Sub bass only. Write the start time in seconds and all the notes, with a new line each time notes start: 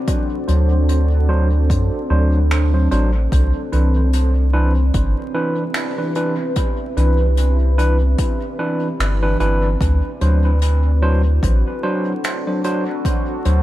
0.48 D2
1.70 F#2
2.10 D2
2.91 A1
3.32 C2
3.73 C2
4.94 G1
6.97 C2
8.99 G1
9.40 G1
9.81 D2
10.21 D2
11.43 A1
13.46 D2